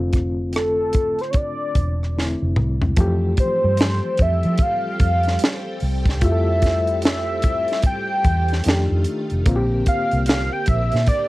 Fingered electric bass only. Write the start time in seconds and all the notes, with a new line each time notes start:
Already playing: F1
1.76 E1
2.42 F1
2.58 C2
2.98 F2
3.64 G2
4.20 F2
4.45 F3
5.01 F2
5.82 C2
6.22 F2
8.25 E2
8.66 F2
8.91 F2
9.32 F1
9.47 A#1
10.13 C2
10.68 A#1
10.94 A#2